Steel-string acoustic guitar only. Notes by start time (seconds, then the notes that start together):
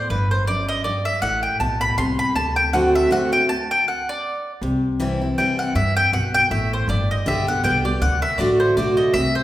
0.10 G2
0.48 F#2
0.85 G2
1.23 A2
1.61 B2
1.98 C3
2.36 D3
2.73 D3 A3 C4 F#4
3.11 D3 A3 C4 F#4
3.32 C4 F#4
4.63 C3
5.00 E3 G3 C4 E4
5.21 C4 E4
5.38 E3 G3 C4 E4
5.75 G2
6.13 B2
6.51 A2
6.89 G2
7.26 D3 G3 B3 G4
7.47 B3 G4
7.64 D3 G3 B3 G4
7.85 B3 G4
8.02 D3
8.39 D3 A3 D4 F#4
8.77 D3 A3 D4 F#4
9.15 C3